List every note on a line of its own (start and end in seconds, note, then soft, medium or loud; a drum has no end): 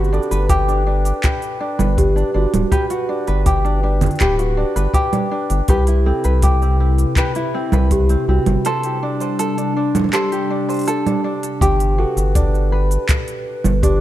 0.00 0.19 G1 medium
0.00 0.12 D4 medium
0.00 1.23 F#4 medium
0.00 0.12 G4 loud
0.00 0.31 B4 medium
0.00 8.61 B4 medium
0.04 shaker soft
0.13 0.67 D4 medium
0.13 0.49 A4 medium
0.13 shaker soft
0.23 shaker soft
0.31 1.12 G1 medium
0.31 0.49 B4 medium
0.31 open hi-hat soft
0.31 shaker medium
0.49 1.24 G4 medium
0.49 kick loud
0.49 open hi-hat medium
0.49 shaker medium
0.68 0.85 D4 medium
0.68 shaker soft
0.87 1.59 D4 medium
1.05 open hi-hat soft
1.05 shaker medium
1.24 2.71 G4 medium
1.24 1.78 B4 medium
1.24 kick medium
1.24 clap medium
1.24 open hi-hat medium
1.24 shaker medium
1.42 open hi-hat soft
1.42 shaker soft
1.60 2.15 D4 medium
1.79 2.24 G1 loud
1.79 2.72 B4 medium
1.79 low conga medium
1.79 shaker medium
1.98 2.33 G4 loud
1.98 kick medium
1.98 open hi-hat medium
1.98 shaker medium
2.16 2.33 D4 medium
2.16 shaker soft
2.34 2.46 G1 medium
2.34 3.08 D4 medium
2.34 2.71 F#4 medium
2.54 2.65 D1 medium
2.54 open hi-hat soft
2.54 low conga medium
2.54 shaker medium
2.72 2.90 G4 medium
2.72 3.27 B4 medium
2.72 kick loud
2.72 open hi-hat medium
2.72 shaker soft
2.90 4.20 F#4 medium
2.90 open hi-hat soft
2.90 shaker soft
3.09 3.63 D4 medium
3.27 4.09 G1 medium
3.27 3.46 B4 medium
3.27 open hi-hat soft
3.46 4.21 G4 medium
3.46 kick medium
3.46 open hi-hat medium
3.46 shaker medium
3.65 3.82 D4 medium
3.65 shaker soft
3.83 4.56 D4 medium
4.01 open hi-hat soft
4.01 low conga medium
4.01 shaker medium
4.06 open hi-hat soft
4.11 open hi-hat soft
4.15 open hi-hat soft
4.20 4.65 D1 medium
4.20 4.38 G4 medium
4.20 4.42 G4 loud
4.20 4.76 B4 medium
4.20 kick medium
4.20 clap medium
4.20 open hi-hat medium
4.20 shaker medium
4.39 5.69 F#4 medium
4.39 open hi-hat soft
4.39 shaker soft
4.57 5.12 D4 medium
4.76 4.87 G1 medium
4.76 5.69 B4 medium
4.76 open hi-hat soft
4.76 shaker medium
4.94 5.69 G4 medium
4.94 kick medium
4.94 open hi-hat medium
4.94 shaker medium
5.13 5.30 D4 medium
5.13 open hi-hat soft
5.13 low conga medium
5.13 shaker soft
5.31 5.76 D4 medium
5.50 5.62 G1 medium
5.50 open hi-hat soft
5.50 shaker medium
5.68 6.12 C2 medium
5.68 11.57 C3 medium
5.68 8.62 E4 medium
5.68 6.04 G4 loud
5.68 5.87 G4 medium
5.68 6.23 B4 medium
5.68 kick loud
5.68 open hi-hat medium
5.68 shaker soft
5.87 7.17 E4 medium
5.87 open hi-hat soft
5.87 shaker soft
6.06 6.62 C4 medium
6.06 6.41 A4 medium
6.24 7.05 C2 medium
6.24 7.17 B4 medium
6.24 open hi-hat soft
6.24 shaker medium
6.42 7.17 G4 medium
6.42 kick medium
6.42 open hi-hat medium
6.42 shaker medium
6.62 6.80 C4 medium
6.62 shaker soft
6.80 7.54 C4 medium
6.98 open hi-hat soft
6.98 shaker medium
7.16 7.35 G4 medium
7.16 7.72 B4 medium
7.16 kick loud
7.16 clap medium
7.16 open hi-hat medium
7.16 shaker soft
7.35 8.73 E4 medium
7.35 open hi-hat soft
7.35 shaker soft
7.54 8.09 C4 medium
7.72 8.16 C2 loud
7.72 8.65 B4 medium
7.72 low conga medium
7.72 shaker medium
7.91 8.27 G4 medium
7.91 kick medium
7.91 open hi-hat medium
7.91 shaker soft
8.09 8.28 C4 medium
8.09 open hi-hat soft
8.09 shaker soft
8.28 8.39 C2 medium
8.28 9.02 C4 medium
8.28 8.63 F#4 medium
8.46 8.58 G1 medium
8.46 open hi-hat soft
8.46 low conga medium
8.65 11.59 G3 medium
8.65 11.59 D4 medium
8.65 9.38 A4 medium
8.65 9.20 C5 medium
8.65 open hi-hat medium
8.65 shaker medium
8.83 10.31 G4 medium
8.83 open hi-hat soft
8.83 shaker soft
9.03 9.57 D4 medium
9.20 10.13 C5 medium
9.20 open hi-hat soft
9.20 shaker medium
9.39 10.12 A4 medium
9.39 open hi-hat medium
9.39 shaker medium
9.58 9.76 D4 medium
9.58 open hi-hat soft
9.58 shaker soft
9.77 10.50 D4 medium
9.95 open hi-hat soft
9.95 low conga medium
9.95 shaker medium
10.00 low conga medium
10.04 low conga medium
10.09 low conga soft
10.13 10.34 G4 loud
10.13 10.86 A4 medium
10.13 10.67 C5 medium
10.13 clap medium
10.13 open hi-hat medium
10.13 shaker soft
10.32 11.61 G4 medium
10.32 open hi-hat soft
10.32 shaker soft
10.50 11.06 D4 medium
10.69 11.61 C5 medium
10.69 open hi-hat soft
10.69 shaker medium
10.72 open hi-hat soft
10.74 open hi-hat soft
10.77 open hi-hat soft
10.79 open hi-hat soft
10.81 open hi-hat soft
10.83 open hi-hat soft
10.85 11.69 A4 medium
10.85 open hi-hat soft
10.88 open hi-hat medium
10.88 shaker medium
11.06 11.24 D4 medium
11.06 open hi-hat soft
11.06 low conga medium
11.06 shaker soft
11.24 12.35 D4 medium
11.43 open hi-hat soft
11.43 shaker medium
11.61 12.05 G1 loud
11.61 14.01 G4 medium
11.61 11.97 G4 loud
11.61 14.01 B4 medium
11.61 kick loud
11.61 open hi-hat medium
11.61 shaker medium
11.80 open hi-hat soft
11.80 shaker soft
11.98 13.46 F#4 medium
11.98 12.34 A4 medium
12.17 12.98 G1 medium
12.17 open hi-hat soft
12.17 shaker medium
12.35 13.82 D4 medium
12.35 kick medium
12.35 open hi-hat medium
12.35 shaker medium
12.55 shaker soft
12.72 14.01 B4 medium
12.91 open hi-hat soft
12.91 shaker medium
13.09 kick loud
13.09 clap medium
13.09 open hi-hat medium
13.09 shaker medium
13.28 open hi-hat soft
13.28 shaker soft
13.64 14.01 G1 loud
13.64 low conga medium
13.64 shaker medium
13.83 14.01 D4 medium
13.83 14.01 G4 medium
13.83 kick medium
13.83 open hi-hat medium
13.83 shaker soft